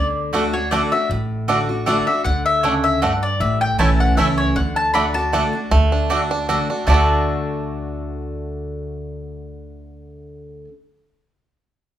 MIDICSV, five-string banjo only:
0, 0, Header, 1, 2, 480
1, 0, Start_track
1, 0, Key_signature, 2, "major"
1, 0, Tempo, 384615
1, 1379, Time_signature, 3, 2, 24, 8
1, 14957, End_track
2, 0, Start_track
2, 0, Title_t, "Five-string banjo"
2, 0, Program_c, 0, 105
2, 430, Note_on_c, 0, 57, 66
2, 434, Note_on_c, 0, 62, 55
2, 459, Note_off_c, 0, 62, 0
2, 539, Note_off_c, 0, 57, 0
2, 905, Note_on_c, 0, 57, 67
2, 915, Note_on_c, 0, 62, 65
2, 940, Note_off_c, 0, 62, 0
2, 1016, Note_off_c, 0, 57, 0
2, 1861, Note_on_c, 0, 57, 64
2, 1869, Note_on_c, 0, 62, 59
2, 1894, Note_off_c, 0, 62, 0
2, 1973, Note_off_c, 0, 57, 0
2, 2340, Note_on_c, 0, 57, 60
2, 2350, Note_on_c, 0, 62, 67
2, 2375, Note_off_c, 0, 62, 0
2, 2453, Note_off_c, 0, 57, 0
2, 3302, Note_on_c, 0, 57, 64
2, 3306, Note_on_c, 0, 62, 66
2, 3331, Note_off_c, 0, 62, 0
2, 3413, Note_off_c, 0, 57, 0
2, 3782, Note_on_c, 0, 57, 64
2, 3789, Note_on_c, 0, 62, 64
2, 3814, Note_off_c, 0, 62, 0
2, 3892, Note_off_c, 0, 57, 0
2, 4741, Note_on_c, 0, 57, 60
2, 4748, Note_on_c, 0, 61, 64
2, 4751, Note_on_c, 0, 64, 60
2, 4852, Note_off_c, 0, 57, 0
2, 4854, Note_off_c, 0, 61, 0
2, 4857, Note_off_c, 0, 64, 0
2, 5221, Note_on_c, 0, 57, 64
2, 5224, Note_on_c, 0, 61, 68
2, 5228, Note_on_c, 0, 64, 63
2, 5332, Note_off_c, 0, 57, 0
2, 5333, Note_off_c, 0, 61, 0
2, 5335, Note_off_c, 0, 64, 0
2, 6174, Note_on_c, 0, 57, 58
2, 6185, Note_on_c, 0, 62, 58
2, 6210, Note_off_c, 0, 62, 0
2, 6289, Note_off_c, 0, 57, 0
2, 6656, Note_on_c, 0, 57, 69
2, 6664, Note_on_c, 0, 62, 60
2, 6689, Note_off_c, 0, 62, 0
2, 6771, Note_off_c, 0, 57, 0
2, 7132, Note_on_c, 0, 57, 99
2, 7391, Note_on_c, 0, 62, 64
2, 7604, Note_off_c, 0, 62, 0
2, 7619, Note_on_c, 0, 62, 68
2, 7821, Note_off_c, 0, 57, 0
2, 7859, Note_off_c, 0, 62, 0
2, 7874, Note_on_c, 0, 62, 80
2, 8083, Note_off_c, 0, 62, 0
2, 8098, Note_on_c, 0, 62, 73
2, 8346, Note_off_c, 0, 62, 0
2, 8361, Note_on_c, 0, 62, 70
2, 8581, Note_off_c, 0, 62, 0
2, 8581, Note_on_c, 0, 57, 76
2, 8608, Note_on_c, 0, 62, 78
2, 8632, Note_on_c, 0, 66, 74
2, 8659, Note_on_c, 0, 69, 78
2, 13284, Note_off_c, 0, 57, 0
2, 13298, Note_off_c, 0, 62, 0
2, 13310, Note_off_c, 0, 66, 0
2, 13323, Note_off_c, 0, 69, 0
2, 14957, End_track
0, 0, End_of_file